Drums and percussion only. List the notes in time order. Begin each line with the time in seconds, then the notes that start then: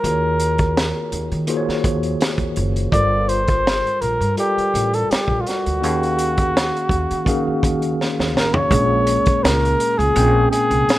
0.04 closed hi-hat
0.40 closed hi-hat
0.58 kick, closed hi-hat
0.77 snare, closed hi-hat
1.12 closed hi-hat
1.32 closed hi-hat
1.47 closed hi-hat
1.69 snare
1.84 kick, closed hi-hat
2.03 closed hi-hat
2.21 snare, closed hi-hat
2.38 kick, closed hi-hat
2.56 closed hi-hat
2.76 closed hi-hat
2.92 kick, closed hi-hat
3.29 closed hi-hat
3.48 kick, closed hi-hat
3.67 snare, closed hi-hat
3.87 closed hi-hat
4.02 closed hi-hat
4.21 closed hi-hat
4.37 closed hi-hat
4.58 closed hi-hat
4.75 closed hi-hat
4.94 closed hi-hat
5.11 snare, closed hi-hat
5.28 kick
5.47 snare, closed hi-hat
5.66 closed hi-hat
5.84 closed hi-hat
6.03 closed hi-hat
6.19 closed hi-hat
6.37 kick, closed hi-hat
6.57 snare, closed hi-hat
6.76 closed hi-hat
6.89 kick, closed hi-hat
7.11 closed hi-hat
7.26 kick, closed hi-hat
7.63 kick, closed hi-hat
7.82 closed hi-hat
8.01 snare
8.20 snare
8.37 snare
8.54 floor tom
8.71 kick, closed hi-hat
9.07 closed hi-hat
9.26 kick, closed hi-hat
9.45 snare, closed hi-hat
9.65 closed hi-hat
9.80 closed hi-hat
10.00 closed hi-hat
10.16 closed hi-hat
10.53 closed hi-hat
10.71 closed hi-hat
10.89 snare, closed hi-hat